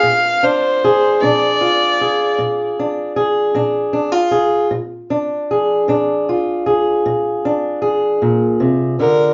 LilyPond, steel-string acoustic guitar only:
\new Staff \with { instrumentName = "Steel-string acoustic guitar" } { \time 12/8 \key bes \mixolydian \tempo 4. = 51 << { r8 d'8 aes'8 d'8 f'8 aes'4 d'8 aes'8 d'8 d'16 f'16 aes'8 | r8 d'8 aes'8 d'8 f'8 aes'4 d'8 aes'2 | } \\ { bes,4 r8 bes,4 r8 bes,4 r8 bes,4 r8 | bes,4 r8 bes,4 r8 bes,4 r8 bes,8 c8 d8 | } >> }